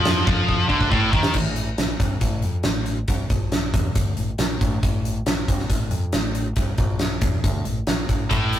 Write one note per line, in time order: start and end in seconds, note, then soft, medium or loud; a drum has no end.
0.00 0.24 F2 loud
0.00 0.24 F3 loud
0.05 snare medium
0.05 crash soft
0.25 0.67 F2 medium
0.25 0.68 F3 medium
0.25 kick loud
0.49 kick medium
0.69 0.90 D2 medium
0.69 0.90 D3 loud
0.69 kick medium
0.81 kick medium
0.91 1.11 A1 medium
0.91 1.11 A2 loud
0.91 kick medium
1.12 1.33 D#2 loud
1.12 1.34 D#3 loud
1.12 kick loud
1.23 snare medium
1.34 1.75 A1 medium
1.34 kick medium
1.34 crash medium
1.56 closed hi-hat medium
1.78 1.98 A#1 medium
1.78 snare medium
1.78 closed hi-hat medium
1.99 2.20 C2 medium
1.99 kick loud
1.99 closed hi-hat medium
2.21 2.42 A1 medium
2.21 kick medium
2.21 closed hi-hat medium
2.42 2.63 F2 medium
2.42 closed hi-hat soft
2.63 3.05 A1 medium
2.63 snare loud
2.63 closed hi-hat medium
2.86 closed hi-hat medium
3.08 3.29 C2 medium
3.08 kick medium
3.08 closed hi-hat medium
3.30 3.71 A#1 medium
3.30 kick medium
3.30 closed hi-hat medium
3.52 snare medium
3.52 closed hi-hat medium
3.74 3.94 E2 medium
3.74 kick loud
3.74 closed hi-hat medium
3.95 4.16 D2 medium
3.95 kick loud
3.95 closed hi-hat medium
4.17 4.37 A1 medium
4.17 closed hi-hat medium
4.38 4.59 A#1 medium
4.38 snare loud
4.38 closed hi-hat medium
4.61 4.81 A1 medium
4.61 kick medium
4.61 closed hi-hat medium
4.83 5.23 A1 medium
4.83 kick medium
4.83 closed hi-hat medium
5.05 closed hi-hat medium
5.26 5.46 A#1 medium
5.26 snare loud
5.26 closed hi-hat medium
5.48 5.68 C2 medium
5.48 kick loud
5.48 closed hi-hat medium
5.59 snare soft
5.69 5.90 A1 medium
5.69 kick medium
5.69 closed hi-hat medium
5.91 6.11 F2 medium
5.91 closed hi-hat soft
6.13 6.53 A1 medium
6.13 snare medium
6.13 closed hi-hat medium
6.35 closed hi-hat medium
6.56 6.77 C2 medium
6.56 kick loud
6.56 closed hi-hat medium
6.78 7.19 A#1 medium
6.78 kick medium
6.78 closed hi-hat medium
6.99 snare medium
6.99 closed hi-hat medium
7.21 7.42 E2 medium
7.21 kick loud
7.21 closed hi-hat medium
7.44 7.64 D2 medium
7.44 kick loud
7.44 closed hi-hat medium
7.65 7.85 A1 medium
7.65 closed hi-hat medium
7.87 8.07 A#1 medium
7.87 snare medium
7.87 closed hi-hat medium
8.09 8.29 A1 medium
8.09 kick medium
8.09 closed hi-hat medium
8.30 8.59 A1 medium
8.30 8.59 A2 loud
8.30 kick medium
8.30 closed hi-hat medium
8.53 closed hi-hat medium